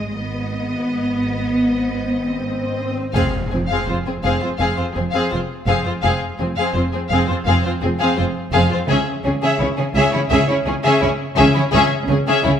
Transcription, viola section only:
3.16 3.33 C4 soft
3.53 3.60 C4 soft
3.71 3.87 C4 soft
3.89 3.96 C4 soft
4.07 4.14 C4 soft
4.25 4.41 C4 soft
4.43 4.50 C4 soft
4.60 4.76 C4 soft
4.79 4.86 C4 soft
4.96 5.03 C4 soft
5.13 5.30 C4 soft
5.32 5.39 C4 soft
5.68 5.84 C4 soft
5.86 5.93 C4 soft
6.04 6.20 C4 soft
6.41 6.48 C4 soft
6.60 6.75 C4 soft
6.77 6.84 C4 soft
6.95 7.01 C4 soft
7.12 7.28 C4 soft
7.30 7.37 C4 soft
7.48 7.64 C4 soft
7.66 7.73 C4 soft
7.84 7.91 C4 soft
8.01 8.17 C4 soft
8.19 8.26 C4 soft
8.55 8.71 C4 soft
8.73 8.80 C4 soft
8.90 9.06 C#4 soft
9.26 9.33 C#4 soft
9.43 9.60 C#4 medium
9.61 9.68 C#4 soft
9.78 9.85 C#4 soft
9.97 10.13 C#4 medium
10.14 10.21 C#4 soft
10.32 10.48 C#4 medium
10.50 10.57 C#4 soft
10.68 10.75 C#4 soft
10.86 11.02 C#4 medium
11.04 11.11 C#4 soft
11.38 11.55 C#4 medium
11.56 11.63 C#4 medium
11.74 11.90 C#4 medium
12.09 12.16 C#4 soft
12.28 12.44 C#4 medium
12.46 12.53 C#4 soft

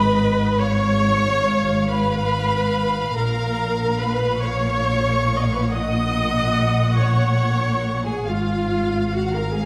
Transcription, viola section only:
0.00 0.59 B4 medium
0.62 1.90 C#5 loud
1.90 3.15 B4 medium
3.16 3.98 A#4 medium
4.00 4.42 B4 medium
4.43 5.34 C#5 medium
5.35 5.43 D#5 medium
5.43 5.52 C#5 medium
5.52 5.61 B4 medium
5.61 5.69 C#5 medium
5.70 6.98 D#5 loud
6.98 8.05 C#5 medium
8.06 8.26 G#4 medium
8.27 9.12 F4 medium
9.13 9.34 F#4 medium
9.35 9.56 A#4 medium
9.55 9.65 G#4 medium

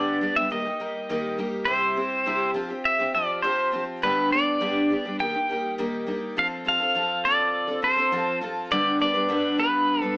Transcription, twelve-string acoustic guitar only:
0.00 0.20 G2 medium
0.00 0.21 D3 medium
0.00 0.20 G3 medium
0.00 0.21 B3 medium
0.00 0.21 D4 medium
0.00 0.21 G4 medium
0.21 0.35 G3 medium
0.21 0.36 B3 medium
0.21 0.36 D4 medium
0.21 0.35 G4 medium
0.36 0.49 G3 soft
0.36 0.51 B3 soft
0.36 0.51 D4 soft
0.36 0.50 G4 medium
0.50 0.65 D#3 medium
0.50 0.65 G3 medium
0.50 0.65 A#3 medium
0.50 0.65 D#4 medium
0.50 0.64 G4 medium
0.65 0.79 A#3 soft
0.65 0.80 D#4 soft
0.65 0.80 G4 soft
0.80 1.09 G3 medium
0.80 1.09 A#3 medium
0.80 1.09 D#4 medium
0.80 1.10 G4 medium
1.09 1.38 D#3 medium
1.09 1.37 G3 medium
1.09 1.38 A#3 medium
1.09 1.38 D#4 medium
1.09 1.39 G4 medium
1.38 1.65 G3 medium
1.38 1.67 A#3 medium
1.38 1.67 D#4 medium
1.38 1.67 G4 medium
1.66 1.96 C3 medium
1.66 1.95 G3 medium
1.66 1.96 C4 medium
1.66 1.96 E4 medium
1.66 1.97 G4 medium
1.96 2.25 G3 medium
1.96 2.26 C4 medium
1.96 2.26 E4 medium
1.96 2.26 G4 medium
2.26 2.55 C3 medium
2.26 2.54 G3 medium
2.26 2.54 C4 medium
2.26 2.55 E4 medium
2.26 2.55 G4 medium
2.54 2.69 F3 medium
2.54 2.70 C4 medium
2.54 2.69 F4 medium
2.54 2.67 G4 medium
2.69 3.00 C4 soft
2.69 2.99 F4 medium
2.69 2.98 G4 medium
2.99 3.13 C4 soft
2.99 3.14 F4 soft
2.99 3.14 G4 medium
3.14 3.42 F3 medium
3.14 3.43 C4 medium
3.14 3.43 F4 medium
3.14 3.44 G4 medium
3.43 3.71 F3 medium
3.43 3.72 C4 medium
3.43 3.72 F4 medium
3.43 3.73 G4 medium
3.72 4.02 F3 medium
3.72 4.02 C4 medium
3.72 4.02 F4 medium
3.72 4.02 G4 medium
4.02 4.31 G2 medium
4.02 4.32 D3 medium
4.02 4.30 G3 medium
4.02 4.31 B3 medium
4.02 4.32 D4 medium
4.02 4.32 G4 medium
4.31 4.60 G3 medium
4.31 4.60 B3 medium
4.31 4.60 D4 medium
4.31 4.61 G4 medium
4.60 4.90 G2 medium
4.60 4.90 D3 medium
4.60 4.89 G3 medium
4.60 4.90 B3 medium
4.60 4.90 D4 medium
4.60 4.91 G4 medium
4.90 5.05 G3 medium
4.90 5.05 B3 medium
4.90 5.04 D4 medium
4.90 5.04 G4 medium
5.05 5.18 G3 soft
5.05 5.20 B3 soft
5.05 5.20 D4 soft
5.05 5.19 G4 soft
5.19 5.34 D#3 medium
5.19 5.34 G3 medium
5.19 5.34 A#3 medium
5.19 5.34 D#4 medium
5.19 5.33 G4 medium
5.34 5.49 A#3 soft
5.34 5.49 D#4 soft
5.34 5.49 G4 medium
5.49 5.77 G3 medium
5.49 5.78 A#3 medium
5.49 5.78 D#4 medium
5.49 5.79 G4 medium
5.78 6.07 D#3 medium
5.78 6.05 G3 medium
5.78 6.06 A#3 medium
5.78 6.07 D#4 medium
5.78 6.07 G4 medium
6.06 6.36 G3 medium
6.06 6.36 A#3 medium
6.06 6.37 D#4 medium
6.06 6.37 G4 medium
6.37 6.63 F3 medium
6.37 6.64 C4 medium
6.37 6.65 F4 medium
6.37 6.66 A4 medium
6.65 6.80 F3 medium
6.65 6.80 C4 medium
6.65 6.80 F4 medium
6.65 6.78 A4 medium
6.80 6.94 C4 soft
6.80 6.94 F4 soft
6.80 6.95 A4 soft
6.94 7.23 F3 medium
6.94 7.24 C4 medium
6.94 7.24 F4 medium
6.94 7.25 A4 medium
7.24 7.68 F3 medium
7.24 7.69 C4 medium
7.24 7.68 F4 medium
7.24 7.66 A4 medium
7.67 7.81 C4 soft
7.67 7.82 F4 soft
7.67 7.83 A4 soft
7.82 7.97 F3 soft
7.82 7.97 C4 medium
7.82 7.96 F4 medium
7.82 7.95 A4 medium
7.96 8.11 C4 soft
7.96 8.12 F4 soft
7.96 8.12 A4 soft
8.12 8.40 F3 medium
8.12 8.41 C4 medium
8.12 8.42 F4 medium
8.12 8.42 A4 medium
8.41 8.71 F3 medium
8.41 8.71 C4 medium
8.41 8.72 F4 medium
8.41 8.72 A4 medium
8.71 9.00 G2 medium
8.71 9.00 D3 medium
8.71 8.98 G3 medium
8.71 8.99 B3 medium
8.71 9.00 D4 medium
8.71 9.01 B4 medium
8.99 9.14 G3 medium
8.99 9.14 B3 medium
8.99 9.13 D4 medium
8.99 9.12 B4 medium
9.13 9.28 G3 soft
9.13 9.28 B3 soft
9.13 9.28 D4 soft
9.13 9.29 B4 medium
9.28 9.58 G2 medium
9.28 9.58 D3 medium
9.28 9.56 G3 medium
9.28 9.57 B3 medium
9.28 9.58 D4 medium
9.28 9.59 B4 medium
9.57 10.02 G3 medium
9.57 10.02 B3 medium
9.57 10.01 D4 medium
9.57 10.00 B4 medium
10.02 10.15 G3 soft
10.02 10.16 B3 soft
10.02 10.16 D4 medium
10.02 10.17 B4 medium

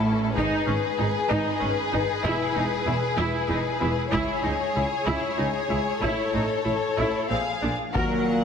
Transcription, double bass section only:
0.00 0.32 A1 medium
0.36 0.44 G#1 medium
0.68 0.76 G#1 soft
0.99 1.07 G#1 soft
1.31 1.39 G#1 medium
1.61 1.69 G#1 medium
1.93 2.01 G#1 soft
2.25 2.33 E1 medium
2.56 2.64 E1 soft
2.88 2.96 E1 soft
3.19 3.27 E1 medium
3.51 3.59 E1 soft
3.82 3.90 E1 soft
4.14 4.22 C#2 medium
4.45 4.53 C#2 soft
4.76 4.84 C#2 soft
5.06 5.14 C#2 medium
5.39 5.47 C#2 soft
5.71 5.79 C#2 soft
6.03 6.11 A1 medium
6.34 6.42 A1 soft
6.66 6.74 A1 soft
6.98 7.06 A1 soft
7.31 7.39 A#1 soft
7.63 7.71 A#1 soft
7.95 8.03 D#2 medium

